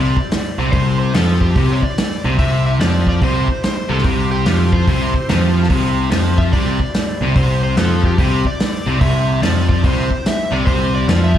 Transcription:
Already playing: C2 C3 E4 G4 C5 D5
0.17 kick
0.31 snare, open hi-hat
0.58 C2 C3
0.72 C2 C3 C5, kick, open hi-hat
0.99 C5
1.14 F2 F3 A4, snare, open hi-hat
1.41 G4, kick
1.55 C2 C3, kick, open hi-hat
1.73 C#5
1.83 D5, kick
1.98 snare, open hi-hat
2.24 C2 C3
2.38 C2 C3 E4 G4 C5 E5, kick, open hi-hat
2.66 E5
2.80 F2 F3 D5, snare, open hi-hat
3.07 D5, kick
3.22 C2 C3 C5, kick, open hi-hat
3.48 kick
3.63 C5, snare, open hi-hat
3.89 C2 C3 A4
3.98 snare
4.04 C2 C3 G4, kick, open hi-hat
4.32 G4
4.46 F2 F3, snare, open hi-hat
4.72 C5, kick
4.87 C2 C3, kick, open hi-hat
5.14 kick
5.29 F2 F3, snare, open hi-hat
5.63 snare
5.70 C2 C3 F4 G#4 C#5, kick, open hi-hat
5.83 E4 G4 C5
6.11 F2 F3, snare, open hi-hat
6.38 E5, kick
6.53 C2 C3 D5, kick, open hi-hat
6.80 kick
6.94 snare, open hi-hat
7.21 C2 C3
7.36 C2 C3 C5, kick, open hi-hat
7.64 C5
7.77 F2 F3 A4, snare, open hi-hat
8.04 G4, kick
8.18 C2 C3 G4, kick, open hi-hat
8.45 D5, kick
8.60 snare, open hi-hat
8.86 C2 C3
9.00 C2 C3 C4 E4 G4 E5, kick, open hi-hat
9.42 F2 F3 D5, snare, open hi-hat
9.69 D5, kick
9.84 C2 C3 C5, kick, open hi-hat
10.11 kick
10.26 E5, snare, open hi-hat
10.51 C2 C3 D5
10.66 C2 C3 C5, kick, open hi-hat
10.95 D5
11.08 F2 F3, snare, open hi-hat
11.24 E5
11.35 kick

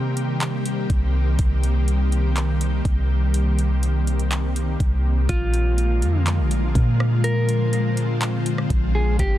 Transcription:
Already playing: C3 D#3 G3 A#3 C4 G4
0.17 closed hi-hat
0.41 clap, closed hi-hat
0.66 closed hi-hat
0.90 C2, kick, closed hi-hat
1.39 C2, kick, closed hi-hat
1.63 closed hi-hat
1.88 closed hi-hat
2.12 closed hi-hat
2.36 clap, closed hi-hat
2.61 closed hi-hat
2.85 C2, kick, closed hi-hat
3.34 closed hi-hat
3.59 closed hi-hat
3.83 closed hi-hat
4.07 closed hi-hat
4.19 closed hi-hat
4.31 clap, closed hi-hat
4.56 closed hi-hat
4.80 C2, kick, closed hi-hat
5.29 A#1 D3 F3 G#3 A#3 F4, kick, closed hi-hat
5.54 closed hi-hat
5.78 closed hi-hat
6.02 F2, closed hi-hat
6.27 clap, closed hi-hat
6.39 A#1
6.51 closed hi-hat
6.75 A#2, kick, closed hi-hat
7.00 cross-stick
7.24 C4 A#4, closed hi-hat
7.49 closed hi-hat
7.73 closed hi-hat
7.97 closed hi-hat
8.21 clap, closed hi-hat
8.46 closed hi-hat
8.58 cross-stick
8.70 A#1, kick, closed hi-hat
8.95 G#4
9.19 G1 G4, kick, closed hi-hat

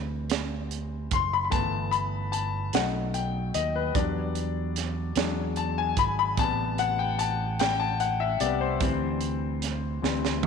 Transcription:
Already playing: D2 E3 G3 C4
0.30 snare, closed hi-hat
0.71 closed hi-hat
1.11 F#1 C6, kick, closed hi-hat
1.33 B5
1.45 B5
1.50 G1 E3 A3 B3 A5, kick, closed hi-hat
1.91 B5, closed hi-hat
2.32 A5, closed hi-hat
2.73 B1 F#3 A3 D#4 F#5, snare, closed hi-hat
3.14 G5, closed hi-hat
3.54 D#2 D#5, closed hi-hat
3.76 B4
3.94 E2 F#3 G3 D4 D5, kick, closed hi-hat
4.35 closed hi-hat
4.76 snare, closed hi-hat
5.16 E2 F#3 G#3 D4, snare, closed hi-hat
5.56 A5, closed hi-hat
5.78 G#5
5.97 G#1 B5, kick, closed hi-hat
6.19 B5
6.37 A1 C3 G3 B3 A5, kick, closed hi-hat
6.78 F#5, closed hi-hat
6.99 G5
7.19 A5, closed hi-hat
7.59 G5, snare, closed hi-hat
7.80 A5
8.00 F#5, closed hi-hat
8.20 E5
8.40 C2 C3 G3 B3 D5, closed hi-hat
8.61 C5
8.80 D2 E3 G3 C4, kick, closed hi-hat
9.21 closed hi-hat
9.62 snare, closed hi-hat
10.02 D2 E3 G3 C4, snare
10.25 snare
10.43 high tom

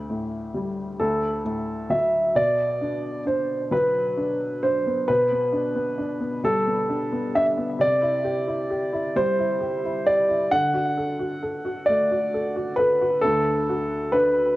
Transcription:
Already playing: D2 G4
0.10 A2
0.54 G3
1.00 D2 A4
1.45 A2
1.90 F#3 E5
2.35 B2 D5
2.81 D4
3.26 D4 C5
3.71 F#3 B4
4.17 D4
4.63 D4 C5
4.87 B3
5.08 B2 B4
5.31 B3
5.52 D4
5.75 B3
5.98 D4
6.20 B3
6.44 G3 A4
6.67 B3
6.89 D4
7.12 B3
7.35 D4 E5
7.57 B3
7.79 C3 D5
8.02 E4
8.24 G4
8.47 E4
8.70 G4
8.93 E4
9.16 G3 C5
9.38 E4
9.61 G4
9.84 E4
10.06 G4 D5
10.28 E4
10.51 D3 F#5
10.74 F#4
10.98 A4
11.19 F#4
11.43 A4
11.65 F#4
11.86 A3 D5
12.11 F#4
12.34 A4
12.56 F#4
12.76 A4 B4
13.01 F#4
13.21 D2 D3 A4
13.69 F#4
14.12 D4 B4

